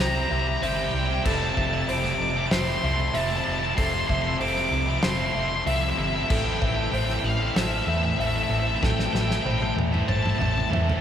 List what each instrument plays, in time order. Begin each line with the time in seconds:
Already playing: overdriven electric guitar C4 E4 G4 C5
0.00 fingered electric bass C2, felt piano C5
0.07 lead electric guitar A#5
0.13 overdriven electric guitar C4 E4 G4 C5, lead electric guitar A#5
0.24 lead electric guitar A#5
0.30 fingered electric bass C2, overdriven electric guitar C4 E4 G4 C5, felt piano E5, lead electric guitar A#5
0.39 lead electric guitar A#5
0.47 lead electric guitar A#5, muted overdriven electric guitar stroke
0.57 lead electric guitar A#5
0.62 fingered electric bass G1, overdriven electric guitar C3 G3 C4 E4 G4 C5, felt piano E5, lead electric guitar G5, open hi-hat
0.69 lead electric guitar G5
0.76 overdriven electric guitar C4 E4 G4 C5, lead electric guitar G5
0.84 lead electric guitar G5
0.91 fingered electric bass C2, overdriven electric guitar C4 E4 G4, lead electric guitar G5
0.96 overdriven electric guitar C5, lead electric guitar G5
1.06 lead electric guitar G5
1.10 overdriven electric guitar C4 E4 G4 C5, lead electric guitar G5
1.25 fingered electric bass F1, overdriven electric guitar F2 C3 F3 A3 C4 E4, felt piano A4, lead electric guitar A5, kick, crash
1.33 lead electric guitar A5
1.42 lead electric guitar A5
1.49 lead electric guitar A5
1.54 fingered electric bass F1, overdriven electric guitar F3 A3 C4 E4, felt piano E5, lead electric guitar A5, kick
1.66 lead electric guitar A5
1.72 overdriven electric guitar F3 A3 C4 E4, lead electric guitar A5
1.81 lead electric guitar A5
1.87 fingered electric bass F1, overdriven electric guitar F2 C3 F3 A3 C4 E4, felt piano C5, lead electric guitar D6, open hi-hat
1.98 lead electric guitar D6
2.03 overdriven electric guitar F3 A3 C4 E4, lead electric guitar D6, snare
2.13 lead electric guitar D6
2.19 fingered electric bass F1, lead electric guitar D6, muted overdriven electric guitar stroke
2.30 lead electric guitar D6
2.35 overdriven electric guitar F3 A3 C4 E4, lead electric guitar D6
2.47 lead electric guitar D6
2.51 fingered electric bass F1, felt piano C5, lead electric guitar C6, snare, open hi-hat
2.62 lead electric guitar C6
2.66 overdriven electric guitar F3 A3 C4 E4, lead electric guitar C6
2.76 lead electric guitar C6
2.83 fingered electric bass C2, overdriven electric guitar F3 A3 C4 E4, felt piano E5, lead electric guitar C6
2.93 lead electric guitar C6
3.00 lead electric guitar C6, muted overdriven electric guitar stroke
3.08 lead electric guitar C6
3.13 fingered electric bass F1, overdriven electric guitar F2 C3 F3 A3 C4 E4, felt piano E5, lead electric guitar A5, open hi-hat
3.21 lead electric guitar A5
3.29 overdriven electric guitar F3 A3 C4 E4, lead electric guitar A5
3.38 lead electric guitar A5
3.44 fingered electric bass F1, overdriven electric guitar F3 A3 C4 E4, lead electric guitar A5
3.51 lead electric guitar A5
3.59 overdriven electric guitar A3 C4 E4, lead electric guitar A5
3.63 overdriven electric guitar F3, lead electric guitar A5
3.77 fingered electric bass F1, overdriven electric guitar F2 C3 F3 A3 C4 E4, felt piano A4, lead electric guitar C6, kick, open hi-hat
3.85 lead electric guitar C6
3.92 lead electric guitar C6
4.00 lead electric guitar C6
4.06 fingered electric bass F1, overdriven electric guitar F3 A3 C4 E4, felt piano E5, lead electric guitar C6, kick
4.14 lead electric guitar C6
4.22 overdriven electric guitar A3 C4 E4, lead electric guitar C6
4.26 overdriven electric guitar F3, lead electric guitar C6
4.40 fingered electric bass F1, overdriven electric guitar F2 C3 F3 A3 C4 E4, felt piano C5, lead electric guitar D6, open hi-hat
4.49 lead electric guitar D6
4.54 overdriven electric guitar F3 A3 C4 E4, lead electric guitar D6, snare
4.66 lead electric guitar D6
4.71 fingered electric bass C2, lead electric guitar D6, muted overdriven electric guitar stroke
4.81 lead electric guitar D6
4.88 overdriven electric guitar F3 A3 C4 E4, lead electric guitar D6
4.98 lead electric guitar D6
5.03 fingered electric bass F1, felt piano C5, lead electric guitar C6, snare, open hi-hat
5.10 lead electric guitar C6
5.18 overdriven electric guitar F3 A3 C4 E4, lead electric guitar C6
5.26 lead electric guitar C6
5.33 fingered electric bass F1, overdriven electric guitar F3 A3 C4 E4, felt piano E5, lead electric guitar C6
5.40 lead electric guitar C6
5.48 lead electric guitar C6, muted overdriven electric guitar stroke
5.55 lead electric guitar C6
5.66 fingered electric bass C2, overdriven electric guitar F2 C3 F3 A3 C4 E4, felt piano E5, lead electric guitar E5, open hi-hat
5.76 lead electric guitar E5
5.81 overdriven electric guitar F3 A3 C4 E4, lead electric guitar E5
5.91 lead electric guitar E5
5.97 fingered electric bass G1, overdriven electric guitar F3 A3 C4 E4, lead electric guitar E5
6.07 lead electric guitar E5
6.13 overdriven electric guitar F3 A3 C4 E4, lead electric guitar E5
6.23 lead electric guitar E5
6.29 fingered electric bass A1, overdriven electric guitar A2 E3 A3 C4 E4 A4, felt piano A4, lead electric guitar G5, kick, crash
6.38 lead electric guitar G5
6.46 lead electric guitar G5
6.53 lead electric guitar G5
6.59 fingered electric bass A1, overdriven electric guitar A3 C4 E4 A4, felt piano E5, lead electric guitar G5, kick
6.67 lead electric guitar G5
6.75 overdriven electric guitar A3 C4 E4 A4, lead electric guitar G5
6.83 lead electric guitar G5
6.90 fingered electric bass A1, overdriven electric guitar A2 E3 A3 C4 E4, felt piano C5, lead electric guitar G5, open hi-hat
6.94 overdriven electric guitar A4, lead electric guitar G5
7.05 overdriven electric guitar C4 E4 A4, lead electric guitar G5
7.10 overdriven electric guitar A3, lead electric guitar G5, snare
7.20 fingered electric bass A1, lead electric guitar G5
7.24 lead electric guitar F5, muted overdriven electric guitar stroke
7.40 overdriven electric guitar A3 C4 E4 A4
7.56 fingered electric bass A1, felt piano C5, lead electric guitar E5, snare, open hi-hat
7.64 lead electric guitar E5
7.71 overdriven electric guitar A3 C4 E4 A4, lead electric guitar E5
7.78 lead electric guitar E5
7.86 fingered electric bass E2, overdriven electric guitar A3 C4 E4 A4, lead electric guitar E5, felt piano E5
7.95 lead electric guitar E5
8.03 lead electric guitar E5, muted overdriven electric guitar stroke
8.10 lead electric guitar E5
8.18 fingered electric bass A1, overdriven electric guitar A2 E3 A3 C4 E4 A4, lead electric guitar E5, felt piano E5, open hi-hat
8.27 lead electric guitar E5
8.34 overdriven electric guitar A3 C4 E4 A4, lead electric guitar E5
8.43 lead electric guitar E5
8.49 fingered electric bass A1, overdriven electric guitar A3 C4 E4, lead electric guitar E5
8.53 overdriven electric guitar A4
8.60 lead electric guitar E5
8.66 overdriven electric guitar A3 C4 E4 A4, lead electric guitar E5
8.76 lead electric guitar E5
8.82 fingered electric bass A1, overdriven electric guitar A2 E3 A3 C4 E4 A4, felt piano A4, lead electric guitar G5, kick, snare
8.90 lead electric guitar G5
8.98 lead electric guitar G5, snare
9.05 lead electric guitar G5
9.12 fingered electric bass A1, overdriven electric guitar A3 C4 E4 A4, felt piano E5, lead electric guitar G5, snare
9.21 lead electric guitar G5
9.28 overdriven electric guitar C4 E4 A4, lead electric guitar G5, snare
9.32 overdriven electric guitar A3, lead electric guitar G5
9.43 fingered electric bass A1, overdriven electric guitar A2 E3 A3, felt piano C5, lead electric guitar G5
9.47 overdriven electric guitar C4 E4 A4, high tom
9.51 lead electric guitar G5
9.58 overdriven electric guitar C4 E4 A4, lead electric guitar G5
9.62 overdriven electric guitar A3, lead electric guitar G5, high tom
9.76 fingered electric bass E2, muted overdriven electric guitar stroke, high tom
9.92 overdriven electric guitar A3 C4 E4 A4, mid tom
10.08 fingered electric bass A1, felt piano C5, lead electric guitar A5, mid tom
10.16 lead electric guitar A5
10.23 overdriven electric guitar A3 C4 E4 A4, lead electric guitar A5, mid tom
10.30 lead electric guitar A5
10.38 fingered electric bass A1, overdriven electric guitar A3 C4 E4 A4, felt piano E5, lead electric guitar A5, mid tom
10.45 lead electric guitar A5
10.53 lead electric guitar A5, muted overdriven electric guitar stroke
10.57 lead electric guitar A5, mid tom
10.70 fingered electric bass E2, overdriven electric guitar A2 E3 A3 C4 E4 A4, felt piano E5, mid tom
10.86 overdriven electric guitar A3 C4 E4 A4, floor tom